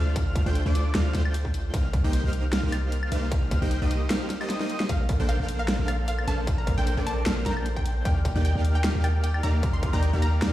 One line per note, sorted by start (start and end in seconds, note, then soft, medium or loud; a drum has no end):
0.00 0.44 D2 loud
0.00 0.44 A3 medium
0.00 0.44 D4 medium
0.00 0.44 F4 medium
0.00 0.44 C5 medium
0.00 0.44 F5 medium
0.00 0.44 F6 medium
0.16 kick loud
0.16 closed hi-hat medium
0.35 kick loud
0.35 closed hi-hat medium
0.46 0.64 D2 loud
0.46 0.63 A3 loud
0.46 0.63 D4 medium
0.46 0.63 F4 loud
0.46 0.63 C5 medium
0.46 0.63 G5 loud
0.46 0.63 G6 loud
0.55 closed hi-hat medium
0.66 0.93 D2 loud
0.66 0.93 A3 medium
0.66 0.93 D4 medium
0.66 0.93 F4 medium
0.66 0.93 C5 medium
0.66 0.93 D5 medium
0.66 0.93 D6 medium
0.75 closed hi-hat medium
0.95 1.13 D2 medium
0.95 1.12 A3 medium
0.95 1.12 D4 medium
0.95 1.12 F4 medium
0.95 1.12 C5 medium
0.95 1.12 F5 medium
0.95 1.12 F6 medium
0.95 snare loud
0.95 closed hi-hat medium
1.14 1.72 D2 medium
1.14 1.72 A3 medium
1.14 1.72 D4 medium
1.14 1.72 F4 medium
1.14 1.72 C5 medium
1.14 1.72 G5 loud
1.14 1.72 G6 loud
1.14 snare medium
1.14 closed hi-hat medium
1.25 high woodblock medium
1.34 closed hi-hat medium
1.45 kick medium
1.54 closed hi-hat medium
1.74 2.02 C2 loud
1.74 1.87 A#3 medium
1.74 1.87 D#4 medium
1.74 1.87 G4 medium
1.74 1.87 C5 medium
1.74 1.87 F5 loud
1.74 1.87 F6 loud
1.74 kick loud
1.74 closed hi-hat medium
1.93 kick loud
1.93 closed hi-hat medium
2.04 2.22 C2 loud
2.04 2.21 A#3 loud
2.04 2.21 D#4 medium
2.04 2.21 G4 medium
2.04 2.21 C5 medium
2.04 2.21 G5 loud
2.04 2.21 G6 loud
2.13 closed hi-hat medium
2.24 2.61 C2 loud
2.24 2.61 A#3 loud
2.24 2.61 D#4 medium
2.24 2.61 G4 medium
2.24 2.61 C5 medium
2.24 2.61 F5 loud
2.24 2.61 F6 loud
2.33 closed hi-hat medium
2.53 snare loud
2.53 closed hi-hat medium
2.63 3.10 C2 loud
2.63 3.10 A#3 loud
2.63 3.10 D#4 medium
2.63 3.10 G4 medium
2.63 3.10 C5 medium
2.63 3.10 F5 loud
2.63 3.10 F6 loud
2.72 closed hi-hat medium
2.72 high woodblock medium
2.92 closed hi-hat medium
3.03 high woodblock medium
3.12 3.60 C2 medium
3.12 3.59 A#3 medium
3.12 3.59 D#4 medium
3.12 3.59 G4 medium
3.12 3.59 C5 medium
3.12 3.59 F5 medium
3.12 3.59 F6 medium
3.12 closed hi-hat medium
3.32 kick loud
3.32 closed hi-hat medium
3.51 kick loud
3.51 closed hi-hat medium
3.62 3.80 C2 loud
3.62 3.79 A#3 loud
3.62 3.79 D#4 medium
3.62 3.79 G4 medium
3.62 3.79 C5 medium
3.62 3.79 G5 loud
3.62 3.79 G6 loud
3.71 closed hi-hat medium
3.82 4.09 C2 loud
3.82 4.08 A#3 medium
3.82 4.08 D#4 medium
3.82 4.08 G4 medium
3.82 4.08 C5 medium
3.82 4.08 D#5 medium
3.82 4.08 D#6 medium
3.91 closed hi-hat medium
4.10 4.28 A#3 medium
4.10 4.28 D#4 medium
4.10 4.28 G4 medium
4.10 4.28 C5 medium
4.10 4.28 F5 medium
4.10 4.28 F6 medium
4.10 snare loud
4.10 closed hi-hat medium
4.30 snare medium
4.30 closed hi-hat medium
4.41 4.58 A#3 medium
4.41 4.58 D#4 medium
4.41 4.58 G4 medium
4.41 4.58 C5 medium
4.41 4.58 D#5 medium
4.41 4.58 D#6 medium
4.41 high woodblock medium
4.50 snare medium
4.50 closed hi-hat medium
4.61 4.87 A#3 loud
4.61 4.87 D#4 medium
4.61 4.87 G4 medium
4.61 4.87 C5 medium
4.61 4.87 D#5 loud
4.61 4.87 D#6 loud
4.61 snare medium
4.70 closed hi-hat medium
4.80 snare medium
4.89 5.18 A#1 loud
4.89 5.02 A#3 medium
4.89 5.02 D4 medium
4.89 5.02 A4 medium
4.89 5.20 C5 loud
4.89 5.02 F5 medium
4.89 5.23 F5 loud
4.89 5.02 F6 loud
4.89 kick loud
4.89 closed hi-hat medium
5.00 5.15 A#4 medium
5.09 5.35 A4 medium
5.09 kick loud
5.09 closed hi-hat medium
5.20 5.38 A#1 loud
5.20 5.37 A#3 loud
5.20 5.37 D4 medium
5.20 5.37 A4 medium
5.20 5.37 C5 medium
5.20 5.48 C5 loud
5.20 5.37 G5 loud
5.20 5.37 G6 loud
5.29 5.46 A#4 loud
5.29 5.54 F5 loud
5.29 closed hi-hat medium
5.39 5.77 A#1 loud
5.39 5.76 A#3 loud
5.39 5.76 D4 medium
5.39 5.76 A4 medium
5.39 5.65 A4 loud
5.39 5.76 C5 medium
5.39 5.76 F5 loud
5.39 5.76 F6 loud
5.49 5.78 C5 medium
5.49 closed hi-hat medium
5.59 5.74 A#4 loud
5.59 5.84 F5 loud
5.68 5.94 A4 medium
5.68 snare loud
5.68 closed hi-hat medium
5.79 6.26 A#1 loud
5.79 6.25 A#3 medium
5.79 6.25 D4 medium
5.79 6.25 A4 medium
5.79 6.25 C5 medium
5.79 6.07 C5 medium
5.79 6.25 F5 loud
5.79 6.25 F6 loud
5.88 6.05 A#4 loud
5.88 6.05 F5 medium
5.88 closed hi-hat medium
5.88 high woodblock medium
5.99 6.24 A4 loud
6.08 6.38 C5 loud
6.08 6.25 F5 medium
6.08 closed hi-hat medium
6.18 6.33 A#4 medium
6.18 high woodblock medium
6.27 6.76 A#1 loud
6.27 6.75 A#3 medium
6.27 6.75 D4 medium
6.27 6.64 A4 medium
6.27 6.75 A4 medium
6.27 6.75 C5 medium
6.27 6.75 F5 medium
6.27 6.53 A5 loud
6.27 6.75 F6 medium
6.27 closed hi-hat medium
6.38 6.47 C5 loud
6.47 6.77 C5 loud
6.47 kick loud
6.47 closed hi-hat medium
6.58 6.73 A#4 medium
6.58 6.74 A#5 medium
6.67 6.93 A4 medium
6.67 kick loud
6.67 closed hi-hat medium
6.78 6.95 A#1 loud
6.78 6.95 A#3 loud
6.78 6.95 D4 medium
6.78 6.95 A4 medium
6.78 7.06 C5 loud
6.78 6.95 C5 medium
6.78 7.02 G5 medium
6.78 6.95 G5 loud
6.78 6.95 G6 loud
6.87 7.03 A#4 loud
6.87 closed hi-hat medium
6.97 7.24 A#1 loud
6.97 7.24 A#3 medium
6.97 7.24 D4 medium
6.97 7.24 A4 medium
6.97 7.23 A4 loud
6.97 7.24 C5 medium
6.97 7.24 D5 medium
6.97 7.24 D6 medium
7.06 7.37 C5 medium
7.06 7.40 A5 medium
7.06 closed hi-hat medium
7.17 7.32 A#4 loud
7.26 7.44 A#1 medium
7.26 7.44 A#3 medium
7.26 7.44 D4 medium
7.26 7.44 A4 medium
7.26 7.52 A4 medium
7.26 7.44 C5 medium
7.26 7.44 F5 medium
7.26 7.44 F6 medium
7.26 snare loud
7.26 closed hi-hat medium
7.37 7.65 C5 medium
7.46 8.03 A#1 loud
7.46 8.03 A#3 medium
7.46 8.03 D4 medium
7.46 8.03 A4 medium
7.46 7.63 A#4 loud
7.46 8.03 C5 medium
7.46 8.03 G5 loud
7.46 7.71 A#5 medium
7.46 8.03 G6 loud
7.46 snare medium
7.46 closed hi-hat medium
7.57 7.83 A4 loud
7.57 high woodblock medium
7.66 7.96 C5 loud
7.66 closed hi-hat medium
7.76 7.91 A#4 medium
7.76 8.01 G5 loud
7.76 kick medium
7.85 8.22 A4 medium
7.85 closed hi-hat medium
7.96 9.94 C5 loud
8.05 8.34 D#2 loud
8.05 8.18 A#3 medium
8.05 8.18 D#4 medium
8.05 8.18 G4 medium
8.05 8.35 D5 loud
8.05 8.18 D5 medium
8.05 8.18 F5 loud
8.05 8.39 G5 loud
8.05 8.18 F6 medium
8.05 kick loud
8.05 closed hi-hat medium
8.16 8.44 A#4 medium
8.25 8.55 G4 medium
8.25 kick loud
8.25 closed hi-hat medium
8.36 8.53 D#2 loud
8.36 8.53 A#3 medium
8.36 8.53 D#4 medium
8.36 8.53 G4 medium
8.36 8.64 D5 loud
8.36 8.53 D5 medium
8.36 8.53 G5 loud
8.36 8.53 G6 loud
8.45 8.75 A#4 loud
8.45 8.70 G5 loud
8.45 closed hi-hat medium
8.55 8.93 D#2 loud
8.55 8.92 A#3 loud
8.55 8.92 D#4 medium
8.55 8.92 G4 loud
8.55 8.84 G4 loud
8.55 8.92 D5 medium
8.55 8.92 F5 loud
8.55 8.92 F6 loud
8.64 8.94 D5 medium
8.64 closed hi-hat medium
8.75 9.03 A#4 loud
8.75 9.00 G5 loud
8.84 9.14 G4 medium
8.84 snare loud
8.84 closed hi-hat medium
8.95 9.42 D#2 loud
8.95 9.41 A#3 loud
8.95 9.41 D#4 medium
8.95 9.41 G4 medium
8.95 9.23 D5 medium
8.95 9.41 D5 medium
8.95 9.41 F5 loud
8.95 9.41 F6 loud
9.04 9.34 A#4 loud
9.04 9.21 G5 medium
9.04 closed hi-hat medium
9.04 high woodblock medium
9.14 9.43 G4 loud
9.24 9.54 D5 loud
9.24 9.40 G5 medium
9.24 closed hi-hat medium
9.34 9.73 A#4 medium
9.34 high woodblock medium
9.43 9.92 D#2 medium
9.43 9.91 A#3 medium
9.43 9.91 D#4 medium
9.43 9.82 G4 medium
9.43 9.91 G4 medium
9.43 9.91 D5 medium
9.43 9.91 F5 medium
9.43 9.69 A#5 loud
9.43 9.91 F6 medium
9.43 closed hi-hat medium
9.54 9.63 D5 loud
9.63 9.93 D5 loud
9.63 kick loud
9.63 closed hi-hat medium
9.73 10.02 A#4 medium
9.73 9.90 C6 medium
9.83 10.13 G4 medium
9.83 kick loud
9.83 closed hi-hat medium
9.93 10.11 D#2 loud
9.93 10.11 A#3 loud
9.93 10.11 D#4 medium
9.93 10.11 G4 medium
9.93 10.22 D5 loud
9.93 10.11 D5 medium
9.93 10.11 G5 loud
9.93 10.18 A#5 loud
9.93 10.11 G6 loud
10.02 10.33 A#4 loud
10.02 closed hi-hat medium
10.13 10.40 D#2 medium
10.13 10.40 A#3 medium
10.13 10.40 D#4 medium
10.13 10.42 G4 loud
10.13 10.40 G4 medium
10.13 10.40 D5 medium
10.13 10.40 F5 medium
10.13 10.40 F6 medium
10.22 10.52 D5 medium
10.22 10.53 A#5 loud
10.22 closed hi-hat medium
10.33 10.53 A#4 loud
10.42 10.53 D#2 medium
10.42 10.53 A#3 medium
10.42 10.53 D#4 medium
10.42 10.53 G4 medium
10.42 10.53 D5 medium
10.42 10.53 F5 medium
10.42 10.53 F6 medium
10.42 snare loud
10.42 closed hi-hat medium